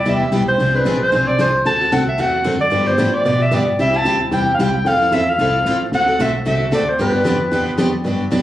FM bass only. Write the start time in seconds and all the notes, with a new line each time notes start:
0.06 E2
0.32 B1
0.58 C2
0.85 A#1
1.12 B1
1.38 C2
1.65 D2
1.92 C2
2.19 E2
2.45 F#2
2.72 G2
2.98 A2
3.25 B2
3.51 G2
3.67 G2
3.79 C2
4.05 D2
4.31 E2
4.58 C2
4.85 F2
5.12 E2
5.38 C2
5.65 A1
5.92 D2
6.19 B1
6.46 C2
6.72 D2
7.00 G2
7.25 F2
7.52 E2
7.66 E2
7.78 F2
8.05 G2
8.32 E2